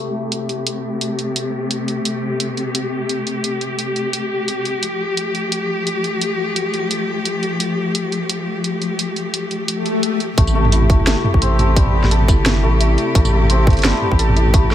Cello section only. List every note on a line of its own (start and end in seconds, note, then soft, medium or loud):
0.00 4.79 C3 medium
0.00 4.79 A3 medium
0.00 10.34 G4 medium
4.83 10.34 F3 medium
4.83 10.34 A3 medium
10.38 14.75 C3 medium
10.38 14.75 A3 medium
10.38 14.75 G4 loud